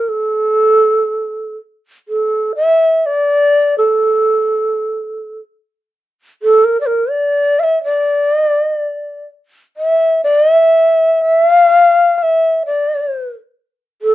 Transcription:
Already playing: A#4
0.09 A4
2.09 A4
2.56 E5
3.06 D5
3.78 A4
6.43 A4
6.64 A#4
6.81 D5
6.86 A#4
7.10 D5
7.59 E5 F5
7.84 D5
8.34 D#5
8.48 D5
8.63 D#5
8.76 D5
9.77 E5
10.24 D5
10.41 D#5
10.52 E5
11.22 E5
11.45 F5
12.18 F5
12.23 E5
12.66 D5
14.02 A4

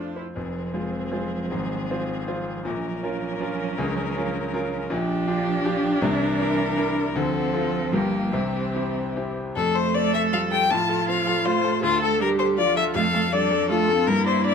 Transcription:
Already playing: F2 A3 C4 D4 F4 A4 C5
0.16 E4 C5
0.36 F1 F2 F3 C4 G#4
0.74 G#3 F4 C5
1.12 G#3 F4 C5
1.51 G#1 G#2
1.90 C4 F4 C5
2.27 C4 F4 C5
2.64 A#1 A#2 F3 C#4 A#4
3.02 C#4 F4 A#4
3.40 C#4 F4 A#4
3.78 C#2 C#3
4.16 C#4 F4 A#4
4.53 C#4 F4 A#4
4.90 A#1 A#2 F3 D4 G4
5.28 D4 F4 G4
5.65 D4 F4 G4
6.02 C2 C3 E3 A#4
6.40 D4 E4 A#4
6.77 D4 E4 A#4
7.15 D2 D3 F3 C4 A4
7.53 C4 F4 A4
7.92 G1 G2 A#3 F4 G4
8.32 C2 C3 E3 C4
8.74 C4 E4 G4
9.16 C4 E4 G4
9.55 F2 A3 A4
9.75 A4 C5
9.94 C4 A4 D5
10.14 A4 E5
10.32 G3 F4 F5
10.51 A4 G5
10.70 A2 F3 F4 A5
10.89 A4
11.08 C4 F5
11.27 A4
11.46 A3 F4 C5
11.64 A3 A4
11.83 D2 F4 A4
12.02 A4
12.20 G3 D4 G4 A#4
12.39 A4 C5
12.58 F3 F4 D5
12.77 A4 E5
12.95 F2 A3 A4 F5
13.13 A3 A4
13.31 G3 D4 A4 D5
13.51 F3 A4
13.69 A3 F4 A4
13.88 C4 A4
14.07 G2 A#3 E4 A#4
14.26 C5 D5
14.44 D4 D5

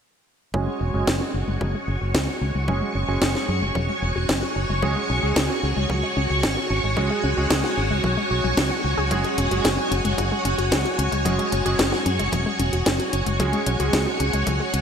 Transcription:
0.54 F#1 F#3 G#3 C#4 F#4 G#4 C#5 G#5 C#6, kick
0.67 G#3
0.81 E1 C#4
0.94 F#1 G#3 C#4 F#4 G#4
1.07 F#1 G#4, kick, snare
1.21 F#4
1.34 F#1 C#4
1.47 F#1 G#3
1.61 F#1 F#3, kick
1.75 G#3
1.88 F#1 C#4
2.01 F#1 F#4
2.14 C#2 G#4, kick, snare
2.28 F#4
2.41 C#2 C#4
2.55 C#2 G#3
2.68 F#1 F#3 G#3 C#4 F#4 G#4, kick
2.82 G#3
2.95 F#1 C#4
3.08 F#1 G#3 C#4 F#4 G#4
3.22 F#1 G#4, kick, snare
3.35 F#4, snare
3.48 F#2 C#4
3.62 F#1 G#3
3.75 E1 F#3, kick
3.89 G#3
4.02 E1 C#4
4.15 E1 F#4
4.29 F#1 G#4, kick, snare
4.43 F#4
4.56 F#1 C#4
4.69 F#1 G#3
4.82 C#2 F#3 G#3 C#4 F#4 G#4, kick
4.96 G#3
5.10 B1 C#4
5.23 C#2 G#3 C#4 F#4 G#4
5.36 C#2 G#4, kick, snare
5.50 F#4
5.63 C#2 C#4
5.77 C#2 G#3
5.90 C#2 F#3, kick
6.03 G#3
6.17 C#2 C#4
6.30 C#2 F#4
6.43 G#1 G#4, kick, snare
6.57 F#4
6.70 G#1 C#4
6.83 G#1 G#3
6.97 C#2 F#3 G#3 C#4 F#4 G#4, kick
7.10 G#3
7.24 C#2 C#4
7.37 C#2 G#3 C#4 F#4 G#4
7.50 C#2 G#4, kick, snare
7.64 F#4, snare
7.77 G#1 C#4
7.91 C#2 G#3
8.04 B1 F#3, kick
8.17 G#3
8.31 B1 F#4
8.44 B1 F#3
8.57 C#2 C#4, kick, snare
8.71 F#5
8.84 C#2 F#4
8.98 C#2 G#4
9.11 F#1 F#3 G#3 C#4 F#4 G#4 C#6, kick, closed hi-hat
9.24 G#3, closed hi-hat
9.38 E1 C#4, closed hi-hat
9.51 F#1 G#3 C#4 F#4 G#4, closed hi-hat
9.64 F#1 G#4, kick, snare, closed hi-hat
9.78 F#4
9.91 F#1 C#4, closed hi-hat
10.05 F#1 G#3, closed hi-hat
10.18 F#1 F#3, kick, closed hi-hat
10.32 G#3
10.45 F#1 C#4, closed hi-hat
10.58 F#1 F#4, closed hi-hat
10.72 C#2 G#4, kick, snare, closed hi-hat
10.85 F#4, closed hi-hat
10.98 C#2 C#4, closed hi-hat
11.12 C#2 G#3, closed hi-hat
11.25 F#1 F#3 G#3 C#4 F#4 G#4, kick, closed hi-hat
11.39 G#3, closed hi-hat
11.52 F#1 C#4, closed hi-hat
11.65 F#1 G#3 C#4 F#4 G#4, closed hi-hat
11.79 F#1 G#4, kick, snare, closed hi-hat
11.92 F#4, snare
12.06 F#2 C#4, closed hi-hat
12.19 F#1 G#3, closed hi-hat
12.32 E1 F#3, kick, closed hi-hat
12.46 G#3
12.59 E1 C#4, closed hi-hat
12.73 E1 F#4, closed hi-hat
12.86 F#1 G#4, kick, snare, closed hi-hat
13.00 F#4, closed hi-hat
13.13 F#1 C#4, closed hi-hat
13.26 F#1 G#3, closed hi-hat
13.40 C#2 F#3 G#3 C#4 F#4 G#4 C#5 G#5 C#6, kick, closed hi-hat
13.53 G#3, closed hi-hat
13.66 B1 C#4, closed hi-hat
13.80 C#2 G#3 C#4 F#4 G#4, closed hi-hat
13.93 C#2 G#4, kick, snare, closed hi-hat
14.07 F#4
14.20 C#2 C#4, closed hi-hat
14.33 C#2 G#3, closed hi-hat
14.47 C#2 F#3, kick, closed hi-hat
14.60 G#3
14.73 C#2 C#4, closed hi-hat

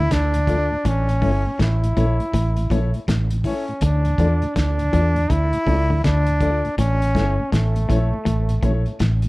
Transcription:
Already playing: D2 E4
0.11 D2 D3 D4, kick, snare, closed hi-hat
0.34 D2 A2, closed hi-hat
0.47 F3 A3 D4 F4 A4 D5, kick, closed hi-hat
0.71 D2 A2
0.85 A1 A2 C#4, kick, closed hi-hat
1.09 A2, closed hi-hat
1.22 G1 G2 E3 A3 C#4 E4 A4 C#5, kick, open hi-hat
1.46 A2
1.59 A1 A2 E4, kick, snare, closed hi-hat
1.84 A2, closed hi-hat
1.96 A#1 A#2 E3 A3 C#4 E4 A4 C#5, kick, closed hi-hat
2.20 A2, closed hi-hat
2.34 A1 A2, kick, closed hi-hat
2.57 A2, closed hi-hat
2.70 A#1 A#2 E3 A3 C#4 E4 A4 C#5, kick, closed hi-hat
2.94 A2, closed hi-hat
3.08 A1 A2, kick, snare, closed hi-hat
3.31 A2, closed hi-hat
3.44 E3 A3 C#4 E4 A4 C#5, kick, open hi-hat
3.68 A2, closed hi-hat
3.81 D2 D3 D4, kick, closed hi-hat
4.05 D2 A2, closed hi-hat
4.18 E2 E3 F3 A3 D4 F4 A4 D5, kick, closed hi-hat
4.42 D2 A2, closed hi-hat
4.56 D2 D3 D4, kick, snare, closed hi-hat
4.78 D2 A2, closed hi-hat
4.92 E2 E3 F3 A3 D4 F4 A4 D5, kick, closed hi-hat
5.15 D2 A2, closed hi-hat
5.30 D2 D3 E4, kick, closed hi-hat
5.52 D2 A2, closed hi-hat
5.66 C#2 C#3 F3 A3 D4 F4 A4 D5, kick, open hi-hat
5.89 D2 A2 D3
6.04 D2 D3 D4, kick, snare, closed hi-hat
6.26 D2 A2, closed hi-hat
6.41 F3 A3 D4 F4 A4 D5, kick, closed hi-hat
6.65 D2 A2, closed hi-hat
6.78 A1 A2 C#4, kick, closed hi-hat
7.02 A2, closed hi-hat
7.15 G1 G2 E3 A3 C#4 E4 A4 C#5, kick, snare, closed hi-hat
7.40 A2
7.52 A1 A2 A3, kick, snare, closed hi-hat
7.76 A2, closed hi-hat
7.89 A#1 A#2 E3 A3 C#4 E4 A4 C#5, kick, closed hi-hat
8.14 A2
8.25 A1 A2, kick, closed hi-hat
8.49 A2, closed hi-hat
8.63 A#1 A#2 E3 A3 C#4 E4 A4 C#5, kick, closed hi-hat
8.86 A2 A4 C#5, closed hi-hat
9.00 A1 A2, kick, snare, closed hi-hat
9.22 A2, closed hi-hat

